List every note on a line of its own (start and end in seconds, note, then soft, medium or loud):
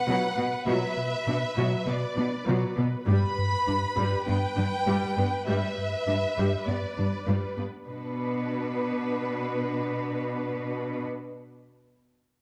0.00 3.04 B4 soft
0.00 0.67 F#5 medium
0.07 0.25 B2 medium
0.07 0.15 B2 medium
0.07 0.35 F#3 soft
0.37 0.45 B2 soft
0.37 0.55 B2 soft
0.37 0.46 B3 soft
0.67 0.75 B2 medium
0.67 0.85 B2 medium
0.67 0.95 F#3 medium
0.67 1.85 E5 medium
0.97 1.15 B2 soft
1.27 1.45 B2 soft
1.27 1.36 B2 soft
1.27 1.35 D4 soft
1.57 1.65 B2 soft
1.57 1.76 B2 medium
1.57 1.85 F#3 medium
1.87 2.05 B2 soft
1.87 1.96 B2 soft
1.87 1.95 B3 soft
1.87 2.77 D5 medium
2.16 2.25 B2 soft
2.16 2.35 B3 soft
2.16 2.24 D4 soft
2.46 2.55 B2 medium
2.46 2.66 B2 medium
2.46 2.75 F#3 soft
2.77 2.86 B2 soft
2.77 2.96 B2 soft
2.77 2.85 B3 soft
3.07 3.16 G2 soft
3.07 3.26 G2 medium
3.07 3.35 G3 medium
3.07 7.63 B4 soft
3.07 4.23 B5 medium
3.39 3.56 G2 soft
3.67 3.75 G2 soft
3.67 3.86 G2 soft
3.67 3.76 D4 soft
3.97 4.05 G2 medium
3.97 4.16 G2 medium
3.97 4.25 G3 medium
4.27 4.36 G2 soft
4.27 4.46 G2 medium
4.27 4.35 B3 soft
4.27 5.47 G5 medium
4.57 4.65 G2 soft
4.57 4.76 G3 soft
4.57 4.65 D4 soft
4.87 4.96 G2 medium
4.87 5.06 G2 medium
4.87 5.15 G3 medium
5.18 5.36 G2 soft
5.18 5.26 G2 soft
5.18 5.26 B3 soft
5.47 5.66 G2 medium
5.47 5.56 G2 soft
5.47 5.75 G3 medium
5.47 6.65 E5 medium
5.78 5.96 G2 soft
6.07 6.16 G2 soft
6.07 6.26 G2 soft
6.07 6.15 D4 soft
6.37 6.46 G2 soft
6.37 6.56 G2 medium
6.37 6.65 G3 soft
6.67 6.76 G2 soft
6.67 6.86 G2 soft
6.67 6.75 B3 soft
6.67 7.57 D5 soft
6.97 7.06 G2 soft
6.97 7.16 G3 soft
6.97 7.05 D4 soft
7.27 7.45 G2 medium
7.27 7.36 G2 soft
7.27 7.55 G3 soft
7.57 7.66 G2 soft
7.57 7.76 G2 soft
7.57 7.65 B3 soft
7.87 11.03 B2 soft
7.87 11.03 D4 soft
7.87 11.03 B4 soft